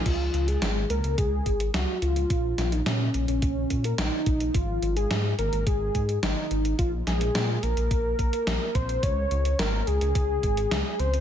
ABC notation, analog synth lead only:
X:1
M:4/4
L:1/16
Q:1/4=107
K:Db
V:1 name="Analog synth lead"
F3 A3 B2 A4 G2 F2- | F3 E D3 D4 B E4 | F3 A3 B2 A4 E4 | F2 A4 B8 c2 |
d4 B2 A8 c2 |]